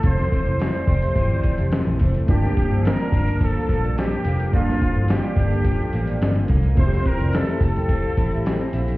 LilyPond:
<<
  \new Staff \with { instrumentName = "Vibraphone" } { \time 4/4 \key f \major \tempo 4 = 107 <c' a'>8 r16 <e' c''>16 r16 <f' d''>16 r16 <g' e''>16 r16 <f' d''>16 r16 <g' e''>16 r8 <e' c''>16 r16 | <d' bes'>8 r16 <e' c''>16 r16 <f' d''>16 r16 <bes' g''>16 r16 <a' f''>16 r16 <f' d''>16 r8 <a' f''>16 r16 | <d' bes'>8 r16 <e' c''>16 r16 <f' d''>16 r16 <bes' g''>16 r16 <a' f''>16 r16 <f' d''>16 r8 <a' f''>16 r16 | <e' c''>8 r16 <f' d''>16 r16 <g' e''>16 r16 <bes' g''>16 r16 <a' f''>16 r16 <g' e''>16 r8 <a' f''>16 r16 | }
  \new Staff \with { instrumentName = "Trumpet" } { \time 4/4 \key f \major c''4 c''2~ c''8 r8 | g'4 bes'4 a'4 g'4 | f'4 g'2~ g'8 r8 | c''8 bes'8 a'8 a'2 r8 | }
  \new Staff \with { instrumentName = "Synth keys" } { \time 4/4 \key f \major r1 | <a bes d' f' a''>1 | <bes d' f' a'>1 | <a c' e' f' g'>1 | }
  \new Staff \with { instrumentName = "Clean electric guitar" } { \time 4/4 \key f \major <f, e a c'>8 e8 a8 c'8 e8 a8 e8 a8 | g,8 f8 bes8 d'8 f8 bes8 f8 bes8 | g,8 f8 bes8 d'8 f8 bes8 f8 bes8 | f8 c'8 e'8 a'8 c'8 e'8 c'8 e'8 | }
  \new Staff \with { instrumentName = "Picked electric bass" } { \clef bass \time 4/4 \key f \major f,,8 r16 f,,8 r16 f,,8 g,,8 r16 f,,8 bes,,16 f,,8 | g,,8 r16 g,,8 r16 g,,4 bes,,4 f,,8 | g,,8 r16 g,,8 r16 g,,4 a,,8 g,,8 c,8 | f,,8 r16 f,,8 r16 f,,4 a,,4 bes,,8 | }
  \new DrumStaff \with { instrumentName = "Drums" } \drummode { \time 4/4 <hh bd>16 sn16 <hh bd>16 hh16 <hh sn>16 hh16 <hh bd>16 hh16 <hh bd>16 hh16 <hh bd>16 hh16 <hh sn>16 hh16 <hho bd>16 hh16 | <hh bd>16 <hh sn>16 <hh bd>16 hh16 <hh sn>16 hh16 <hh bd>16 hh16 <hh bd>8 <hh bd>16 hh16 <hh sn>16 hh16 hh16 hh16 | <hh bd>16 <hh sn>16 <hh bd>16 hh16 <hh sn>16 hh16 <hh bd>16 hh16 <hh bd>8 hh16 hh16 <hh sn>16 hh16 <hh bd>16 hh16 | <hh bd>16 <hh sn>16 <hh bd>16 hh16 <hh sn>16 hh16 <hh bd>16 hh16 <hh bd>8 <hh bd>16 hh16 <hh sn>16 hh16 hh16 hh16 | }
>>